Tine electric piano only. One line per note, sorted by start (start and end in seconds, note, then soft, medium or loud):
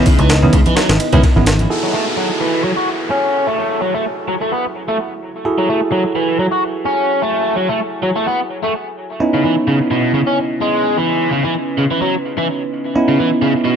0.43 0.55 D#3 medium
0.43 0.55 B3 medium
0.43 0.55 C#4 medium
0.43 0.55 E4 loud
1.13 1.20 D#3 medium
1.13 1.20 B3 medium
1.13 1.20 C#4 medium
1.13 1.20 E4 loud
1.36 1.44 D#3 medium
1.36 1.44 B3 medium
1.36 1.44 C#4 medium
1.36 1.44 E4 medium
1.70 5.43 E4 medium
1.70 5.43 F#4 medium
1.70 5.43 G#4 medium
1.70 5.43 A4 medium
5.45 9.18 E4 medium
5.45 9.18 F#4 medium
5.45 9.18 G#4 medium
5.45 9.18 A4 medium
9.20 12.93 B3 medium
9.20 12.93 C#4 medium
9.20 12.93 D#4 medium
9.20 12.93 E4 medium
12.95 13.76 B3 medium
12.95 13.76 C#4 medium
12.95 13.76 D#4 medium
12.95 13.76 E4 medium